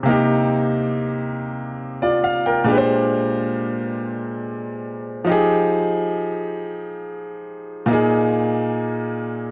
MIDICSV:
0, 0, Header, 1, 2, 480
1, 0, Start_track
1, 0, Tempo, 869565
1, 34, Time_signature, 6, 3, 24, 8
1, 5251, End_track
2, 0, Start_track
2, 0, Title_t, "Grand piano"
2, 0, Program_c, 0, 0
2, 0, Control_c, 0, 64, 127
2, 17, Note_on_c, 0, 48, 63
2, 32, Note_on_c, 0, 58, 66
2, 45, Note_on_c, 0, 63, 62
2, 58, Note_on_c, 0, 67, 76
2, 752, Note_off_c, 0, 67, 0
2, 1116, Note_on_c, 0, 74, 52
2, 1120, Note_on_c, 0, 65, 45
2, 1229, Note_off_c, 0, 74, 0
2, 1231, Note_off_c, 0, 65, 0
2, 1235, Note_on_c, 0, 77, 59
2, 1349, Note_off_c, 0, 77, 0
2, 1358, Note_on_c, 0, 79, 55
2, 1362, Note_on_c, 0, 70, 46
2, 1444, Note_off_c, 0, 48, 0
2, 1451, Note_off_c, 0, 58, 0
2, 1458, Note_off_c, 0, 63, 0
2, 1458, Note_on_c, 0, 46, 70
2, 1469, Note_on_c, 0, 56, 60
2, 1479, Note_on_c, 0, 62, 61
2, 1482, Control_c, 0, 64, 0
2, 1489, Note_on_c, 0, 67, 65
2, 1499, Note_on_c, 0, 71, 58
2, 1523, Note_off_c, 0, 71, 0
2, 1533, Note_on_c, 0, 72, 75
2, 1566, Control_c, 0, 64, 127
2, 1584, Note_off_c, 0, 79, 0
2, 1586, Note_off_c, 0, 70, 0
2, 2884, Note_off_c, 0, 46, 0
2, 2890, Note_off_c, 0, 56, 0
2, 2895, Note_off_c, 0, 62, 0
2, 2896, Note_on_c, 0, 53, 65
2, 2899, Note_off_c, 0, 67, 0
2, 2908, Note_on_c, 0, 63, 70
2, 2920, Control_c, 0, 64, 0
2, 2922, Note_off_c, 0, 72, 0
2, 2922, Note_on_c, 0, 67, 69
2, 2935, Note_on_c, 0, 68, 86
2, 3019, Control_c, 0, 64, 127
2, 4323, Note_off_c, 0, 53, 0
2, 4329, Note_off_c, 0, 63, 0
2, 4336, Note_off_c, 0, 67, 0
2, 4339, Note_on_c, 0, 46, 75
2, 4343, Note_off_c, 0, 68, 0
2, 4352, Note_on_c, 0, 58, 68
2, 4362, Control_c, 0, 64, 0
2, 4364, Note_on_c, 0, 63, 66
2, 4377, Note_on_c, 0, 68, 83
2, 4450, Control_c, 0, 64, 127
2, 5251, Note_off_c, 0, 46, 0
2, 5251, Note_off_c, 0, 58, 0
2, 5251, Note_off_c, 0, 63, 0
2, 5251, Note_off_c, 0, 68, 0
2, 5251, End_track
0, 0, End_of_file